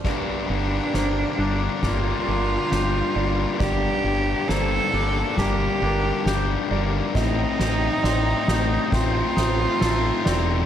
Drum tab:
CC |x-------|--------|--------|
RD |-xxxxxxx|xxxxxxxx|xxxxxxxx|
SD |o-o-o-o-|o-o-o-o-|oooooooo|
BD |o---o---|o---o---|o---o---|